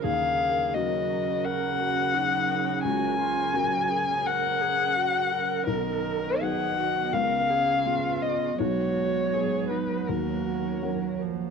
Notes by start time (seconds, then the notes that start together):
Already playing: A#4
0.04 D#2 C#3 F#3 C#4 G#4 F5
0.74 F#3 C#4 F#4 A#4 D#5
1.44 A#4 F#5
1.79 F#4
2.14 D#4
2.83 C#2 F#4 A#4 G#5
3.19 F4
3.54 F#3 C#4 F#4 A#4
3.90 G#4
4.25 A#4 F#5
4.61 G#4
4.96 F#4
5.31 A#4
5.67 B1 D#3 F#3 B3 D#4 A#4
6.41 F#3 D#4 G#4 B4 F#5
6.77 F#4
7.13 C#2 C#3 G#3 C#4 A#4 F5
7.50 G#4
7.86 B3 C#4 F4 G#4
8.22 D#5
8.58 B1 F#3 F#4 C#5 F#5
9.33 B3 F#4 G#4
9.69 D#4 B4
10.08 D#2 A#3 F#4 A#4 C#5
10.83 F#3 C#4 A#4 F#5
11.21 F3